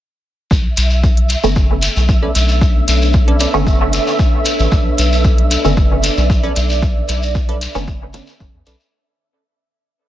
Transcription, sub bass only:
0.51 0.68 B1 loud
0.77 1.35 B1 medium
1.44 1.88 F#1 loud
1.96 2.28 B1 loud
2.35 2.80 B1 medium
2.88 3.46 B1 medium
3.54 3.99 F#1 loud
4.59 4.67 A1 loud
4.72 4.89 B1 loud
4.98 5.57 B1 medium
5.65 6.09 F#1 loud
6.17 6.49 B1 loud
6.56 7.01 B1 medium
7.09 7.67 B1 medium
7.75 8.20 F#1 loud
8.40 8.49 F#1 loud
8.54 8.62 E2 medium
8.67 8.75 B1 medium

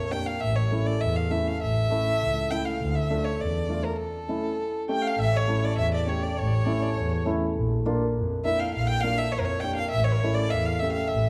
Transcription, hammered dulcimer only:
0.11 0.27 A#3 soft
0.11 0.27 D4 soft
0.11 0.27 G4 medium
0.71 0.87 A3 medium
0.71 0.87 C#4 soft
0.71 0.87 E4 medium
1.30 1.46 A3 medium
1.30 1.46 C#4 medium
1.30 1.46 E4 medium
1.90 2.06 A3 medium
1.90 2.06 C#4 soft
1.90 2.06 E4 medium
2.51 2.66 A3 medium
2.51 2.66 C#4 soft
2.51 2.66 E4 medium
3.10 3.25 A3 medium
3.10 3.25 D4 medium
3.10 3.26 F4 medium
3.69 3.84 A3 medium
3.69 3.84 D4 soft
3.69 3.85 F4 medium
4.28 4.44 A3 medium
4.28 4.44 C#4 medium
4.28 4.44 E4 medium
4.88 5.04 A3 medium
4.88 5.04 C#4 medium
4.88 5.04 G4 medium
5.48 5.63 A3 medium
5.48 5.63 C#4 medium
5.48 5.63 E4 medium
6.06 6.22 A3 soft
6.06 6.22 C#4 soft
6.06 6.22 G4 medium
6.65 6.81 A3 medium
6.65 6.81 C#4 medium
6.65 6.82 E4 medium
7.25 7.41 A3 medium
7.25 7.41 C#4 medium
7.25 7.41 E4 medium
7.85 8.00 A#3 medium
7.85 8.01 D4 medium
7.85 8.01 F4 medium
8.44 8.60 A#3 medium
8.44 8.60 D4 medium
8.44 8.60 E4 medium
9.04 9.19 A#3 medium
9.04 9.19 D4 medium
9.04 9.19 F4 medium
9.63 9.78 A#3 soft
9.63 9.78 D4 soft
9.63 9.78 G4 medium
10.23 10.38 A3 medium
10.23 10.38 C#4 medium
10.23 10.38 E4 medium
10.81 10.96 A3 medium
10.81 10.96 C#4 soft
10.81 10.97 G4 soft

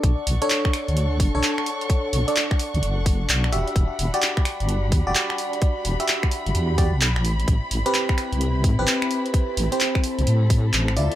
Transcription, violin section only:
0.04 7.21 D4 medium
0.04 3.49 A4 medium
0.04 7.21 F#5 medium
0.04 3.49 C#6 medium
3.52 9.07 G3 medium
3.52 10.93 B5 medium
7.24 10.93 C4 medium
7.24 10.93 E4 medium
9.11 11.15 A4 medium
10.97 11.15 C5 medium
10.97 11.15 E5 medium

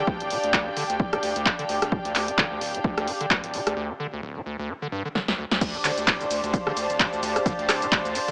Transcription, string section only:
0.00 3.77 D4 medium
0.00 3.77 G4 medium
0.00 3.77 D5 medium
0.00 3.77 F5 medium
0.00 3.77 G5 medium
5.61 8.31 D4 medium
5.70 8.31 G4 medium
5.84 8.31 C5 medium
6.22 8.31 F5 medium
6.66 8.31 A5 medium

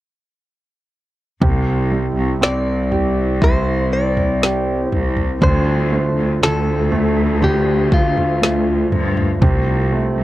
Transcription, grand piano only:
1.41 5.38 C3 medium
1.92 3.88 G3 soft
2.41 4.37 C4 soft
2.91 4.41 G4 medium
3.42 5.38 E4 medium
4.42 5.39 G4 medium
5.42 6.41 D3 medium
5.92 6.90 A3 soft
6.43 7.40 D3 medium
6.92 8.40 A3 medium
7.42 9.38 D3 medium
8.42 9.39 A3 soft
9.42 10.24 C3 medium
9.92 10.24 A3 medium

